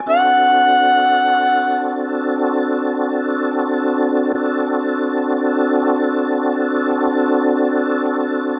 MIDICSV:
0, 0, Header, 1, 3, 480
1, 0, Start_track
1, 0, Tempo, 500000
1, 8249, End_track
2, 0, Start_track
2, 0, Title_t, "Harmonica"
2, 0, Program_c, 0, 22
2, 90, Note_on_c, 0, 78, 98
2, 2096, Note_off_c, 0, 78, 0
2, 8249, End_track
3, 0, Start_track
3, 0, Title_t, "Tonewheel organ"
3, 0, Program_c, 1, 16
3, 58, Note_on_c, 1, 60, 60
3, 62, Note_on_c, 1, 69, 66
3, 65, Note_on_c, 1, 66, 61
3, 67, Note_on_c, 1, 62, 62
3, 4147, Note_off_c, 1, 60, 0
3, 4150, Note_off_c, 1, 69, 0
3, 4151, Note_off_c, 1, 66, 0
3, 4152, Note_off_c, 1, 62, 0
3, 4169, Note_on_c, 1, 62, 62
3, 4169, Note_on_c, 1, 66, 59
3, 4171, Note_on_c, 1, 60, 60
3, 4180, Note_on_c, 1, 69, 58
3, 8249, Note_off_c, 1, 60, 0
3, 8249, Note_off_c, 1, 62, 0
3, 8249, Note_off_c, 1, 66, 0
3, 8249, Note_off_c, 1, 69, 0
3, 8249, End_track
0, 0, End_of_file